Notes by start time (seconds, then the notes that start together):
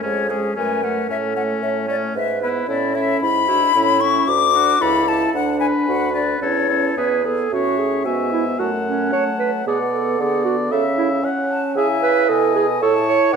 0.03 F2 G#3 C#4 G#4 C#5
0.29 G#3 C#4 G#4
0.56 F#2 A3 C#4 B4 G#5
0.83 A3 C#4 F#5
1.09 A2 A3 C#4 A4 E5
1.35 A3 C#4 F#5
1.63 A2 C#5 E5
1.88 A3 C#4 D5
2.15 G#2 B4 E5
2.41 B3 E4 B4
2.68 A2 C#4 E4 A4 D5
2.94 C#4 E4 E5
3.21 G#2 E4 B5
3.48 D4 E4 F#4
3.75 A2 C#4 E4
4.00 C#4 E4 C#6
4.27 D2 F#4 D6
4.54 D4 F#4
4.81 C#2 E4 A4 B5
5.07 E4 A4 A5
5.34 D2 D4 F#5
5.59 D4 B4 G#5
5.87 D2 F#4 F#5
6.14 D4 B4 D5
6.41 E2 C#4 E4 A4 C#5
6.68 C#4 A4
6.97 E2 B3 G#4 B4
7.25 B3 G#4 A4
7.52 A2 C#4 F#4 C#5 E5
7.79 G#4
8.05 G#2 B3 F#4 E5 G#5
8.32 E4
8.59 F#2 A3 F#4 F#5 A5
8.86 C#4
9.12 F#3 A3 C#5 A5
9.39 B4
9.66 B2 B3 G#4 D5 F#5
9.93 A4
10.19 D3 B3 G#4 D5
10.45 F#4
10.71 C#3 C#4 A4 E5
10.98 E4
11.24 C#4 E5 F#5
11.49 A5
11.76 C#3 E4 G#4 E5 G#5
12.02 B4
12.29 B2 A4 D#5 G#5
12.55 G#4
12.81 A2 E4 A4 C#5 A5
13.08 C#5
13.32 F#5